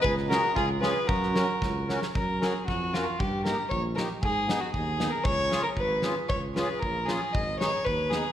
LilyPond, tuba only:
\new Staff \with { instrumentName = "Tuba" } { \clef bass \time 2/4 \key fis \major \tempo 4 = 115 cis,4 cis,4 | fis,4 cis,4 | fis,4 eis,4 | g,4 ais,,4 |
gis,4 dis,4 | cis,4 gis,,4 | cis,4 ais,,4 | gis,,4 dis,4 | }